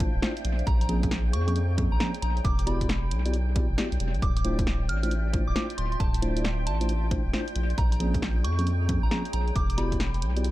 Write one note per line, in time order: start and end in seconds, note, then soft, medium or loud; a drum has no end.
0.00 0.10 A3 medium
0.00 0.10 D4 medium
0.00 0.10 E4 medium
0.00 0.10 F4 medium
0.00 0.44 C5 medium
0.00 0.10 C5 medium
0.00 0.45 D5 medium
0.00 0.45 E5 medium
0.00 1.27 F5 medium
0.00 4.21 G5 medium
0.00 kick loud
0.00 closed hi-hat loud
0.14 0.20 D1 loud
0.22 0.32 A3 medium
0.22 0.32 D4 medium
0.22 0.32 E4 medium
0.22 0.32 F4 medium
0.22 0.32 C5 loud
0.22 snare loud
0.37 closed hi-hat medium
0.44 0.63 A#1 medium
0.44 2.44 G#4 medium
0.44 closed hi-hat loud
0.59 closed hi-hat soft
0.67 1.35 A#1 medium
0.67 0.76 A#5 medium
0.67 kick loud
0.67 closed hi-hat medium
0.81 0.86 A#5 medium
0.81 closed hi-hat medium
0.89 1.01 F3 loud
0.89 1.01 A#3 medium
0.89 1.01 C4 medium
0.89 1.01 C#4 medium
0.89 1.01 G#4 loud
0.89 2.44 A#5 medium
0.89 closed hi-hat loud
1.02 1.09 F3 medium
1.02 1.09 A#3 medium
1.02 1.09 C4 medium
1.02 1.09 C#4 medium
1.02 1.09 G#4 medium
1.02 2.44 C#5 medium
1.02 kick loud
1.02 closed hi-hat medium
1.11 snare loud
1.33 1.86 F2 medium
1.33 1.42 C#6 medium
1.33 closed hi-hat loud
1.48 1.58 F3 medium
1.48 1.58 A#3 medium
1.48 1.58 C4 medium
1.48 1.58 C#4 medium
1.48 1.58 G#4 medium
1.48 1.53 C#6 medium
1.48 closed hi-hat medium
1.56 closed hi-hat medium
1.78 1.88 F3 medium
1.78 1.88 A#3 medium
1.78 1.88 C4 medium
1.78 1.88 C#4 medium
1.78 1.88 G#4 medium
1.78 kick loud
1.78 closed hi-hat loud
1.92 1.98 A#1 loud
1.92 1.97 A#5 medium
2.00 2.10 F3 medium
2.00 2.10 A#3 medium
2.00 2.10 C4 medium
2.00 2.10 C#4 medium
2.00 2.10 G#4 loud
2.00 2.09 A#5 medium
2.00 snare loud
2.14 closed hi-hat medium
2.22 2.40 A#1 medium
2.22 2.43 A#5 medium
2.22 closed hi-hat loud
2.37 closed hi-hat soft
2.45 3.13 E1 loud
2.45 4.22 F#3 medium
2.45 2.54 D6 medium
2.45 kick loud
2.45 closed hi-hat medium
2.59 2.64 D6 medium
2.59 closed hi-hat medium
2.67 2.79 B3 loud
2.67 2.79 E4 medium
2.67 2.79 F#4 medium
2.67 2.79 G4 medium
2.67 2.79 D5 loud
2.67 7.56 D5 medium
2.67 3.11 B5 medium
2.67 closed hi-hat loud
2.81 2.87 B3 medium
2.81 2.87 E4 medium
2.81 2.87 F#4 medium
2.81 2.87 G4 medium
2.81 2.87 D5 medium
2.81 kick medium
2.81 closed hi-hat medium
2.89 snare loud
3.02 5.56 G5 medium
3.11 3.64 B1 medium
3.11 closed hi-hat loud
3.23 3.35 B3 medium
3.23 3.35 E4 medium
3.23 3.35 F#4 medium
3.23 3.35 G4 medium
3.23 3.35 D5 medium
3.23 7.56 E5 medium
3.23 closed hi-hat medium
3.34 closed hi-hat medium
3.56 3.66 B3 medium
3.56 3.66 E4 medium
3.56 3.66 F#4 medium
3.56 3.66 G4 medium
3.56 3.66 D5 medium
3.56 kick loud
3.56 closed hi-hat loud
3.70 3.76 E1 loud
3.78 3.88 B3 medium
3.78 3.88 E4 medium
3.78 3.88 F#4 medium
3.78 3.88 G4 medium
3.78 3.88 D5 loud
3.78 snare loud
3.92 3.98 B1 loud
3.92 closed hi-hat medium
4.00 4.16 E1 loud
4.00 closed hi-hat loud
4.14 4.20 B1 loud
4.14 closed hi-hat soft
4.22 4.90 D1 loud
4.22 8.38 F4 medium
4.22 10.51 G5 medium
4.22 4.31 D6 medium
4.22 kick loud
4.22 closed hi-hat medium
4.37 4.42 D6 medium
4.37 closed hi-hat medium
4.45 4.57 A3 loud
4.45 4.57 D4 medium
4.45 4.57 E4 medium
4.45 4.57 F4 medium
4.45 4.57 C5 loud
4.45 closed hi-hat loud
4.59 4.64 A3 medium
4.59 4.64 D4 medium
4.59 4.64 E4 medium
4.59 4.64 F4 medium
4.59 4.64 C5 medium
4.59 kick loud
4.59 closed hi-hat medium
4.67 snare loud
4.89 5.42 A1 medium
4.89 4.98 F6 medium
4.89 closed hi-hat loud
5.03 5.13 A3 medium
5.03 5.13 D4 medium
5.03 5.13 E4 medium
5.03 5.13 F4 medium
5.03 5.13 C5 medium
5.03 5.08 F6 medium
5.03 closed hi-hat medium
5.11 closed hi-hat medium
5.30 5.44 A3 medium
5.30 5.44 D4 medium
5.30 5.44 E4 medium
5.30 5.44 F4 medium
5.30 5.44 C5 medium
5.30 8.38 C6 medium
5.30 kick loud
5.30 closed hi-hat loud
5.47 5.54 D1 loud
5.47 5.53 D6 medium
5.55 5.66 A3 medium
5.55 5.66 D4 medium
5.55 5.66 E4 medium
5.55 5.66 F4 medium
5.55 5.66 C5 loud
5.55 5.65 D6 medium
5.55 snare loud
5.70 closed hi-hat medium
5.78 5.96 D1 medium
5.78 5.87 C6 medium
5.78 closed hi-hat loud
5.92 5.97 C6 medium
5.92 closed hi-hat soft
6.00 6.68 D1 medium
6.00 6.19 A5 medium
6.00 kick loud
6.00 closed hi-hat medium
6.14 closed hi-hat medium
6.22 6.34 A3 loud
6.22 6.34 D4 medium
6.22 6.34 E4 medium
6.22 6.34 F4 medium
6.22 6.34 C5 loud
6.22 closed hi-hat loud
6.37 6.42 A3 medium
6.37 6.42 D4 medium
6.37 6.42 E4 medium
6.37 6.42 F4 medium
6.37 6.42 C5 medium
6.37 closed hi-hat medium
6.45 snare loud
6.67 7.20 A1 medium
6.67 7.03 A5 loud
6.67 closed hi-hat loud
6.81 6.91 A3 medium
6.81 6.91 D4 medium
6.81 6.91 E4 medium
6.81 6.91 F4 medium
6.81 6.91 C5 medium
6.81 closed hi-hat medium
6.89 closed hi-hat medium
7.11 7.21 A3 medium
7.11 7.21 D4 medium
7.11 7.21 E4 medium
7.11 7.21 F4 medium
7.11 7.21 C5 medium
7.11 kick loud
7.11 closed hi-hat loud
7.25 7.31 D1 loud
7.33 7.44 A3 medium
7.33 7.43 D4 medium
7.33 7.43 E4 medium
7.33 7.44 F4 medium
7.33 7.44 C5 loud
7.33 snare loud
7.48 closed hi-hat medium
7.55 7.74 A#1 medium
7.55 9.56 G#4 medium
7.55 closed hi-hat loud
7.70 closed hi-hat soft
7.78 8.46 A#1 loud
7.78 7.87 A#5 medium
7.78 kick loud
7.78 closed hi-hat medium
7.92 7.97 A#5 medium
7.92 closed hi-hat medium
8.00 8.12 F3 loud
8.00 8.12 A#3 medium
8.00 8.12 C4 medium
8.00 8.12 C#4 medium
8.00 8.12 G#4 loud
8.00 9.55 A#5 medium
8.00 closed hi-hat loud
8.11 8.20 F3 medium
8.11 8.20 A#3 medium
8.11 8.20 C4 medium
8.11 8.20 C#4 medium
8.11 8.20 G#4 medium
8.11 9.56 C#5 medium
8.11 kick loud
8.11 closed hi-hat medium
8.22 snare loud
8.44 8.97 F2 medium
8.44 8.54 C#6 loud
8.44 closed hi-hat loud
8.59 8.69 F3 medium
8.59 8.69 A#3 medium
8.59 8.69 C4 medium
8.59 8.69 C#4 medium
8.59 8.69 G#4 medium
8.59 8.64 C#6 medium
8.59 closed hi-hat medium
8.67 closed hi-hat medium
8.89 8.99 F3 medium
8.89 8.99 A#3 medium
8.89 8.99 C4 medium
8.89 8.99 C#4 medium
8.89 8.99 G#4 medium
8.89 kick loud
8.89 closed hi-hat loud
9.03 9.09 A#1 loud
9.03 9.08 A#5 medium
9.11 9.21 F3 medium
9.11 9.21 A#3 medium
9.11 9.21 C4 medium
9.11 9.21 C#4 medium
9.11 9.21 G#4 loud
9.11 9.20 A#5 medium
9.11 snare loud
9.25 closed hi-hat medium
9.33 9.52 A#1 medium
9.33 9.54 A#5 medium
9.33 closed hi-hat loud
9.48 closed hi-hat soft
9.55 10.24 E1 medium
9.55 10.51 F#3 medium
9.55 9.65 D6 medium
9.55 kick loud
9.55 closed hi-hat medium
9.70 9.75 D6 medium
9.70 closed hi-hat medium
9.78 9.90 B3 loud
9.78 9.90 E4 medium
9.78 9.90 F#4 medium
9.78 9.90 G4 medium
9.78 9.90 D5 loud
9.78 10.51 D5 medium
9.78 10.22 B5 medium
9.78 snare soft
9.78 closed hi-hat loud
9.92 9.98 B3 medium
9.92 9.98 E4 medium
9.92 9.98 F#4 medium
9.92 9.98 G4 medium
9.92 9.98 D5 medium
9.92 kick medium
9.92 closed hi-hat medium
10.00 snare loud
10.11 10.51 E5 medium
10.11 closed hi-hat soft
10.22 10.51 B1 medium
10.22 closed hi-hat loud
10.37 10.46 B3 medium
10.37 10.46 E4 medium
10.37 10.46 F#4 medium
10.37 10.46 G4 medium
10.37 10.46 D5 medium
10.37 closed hi-hat medium
10.44 closed hi-hat medium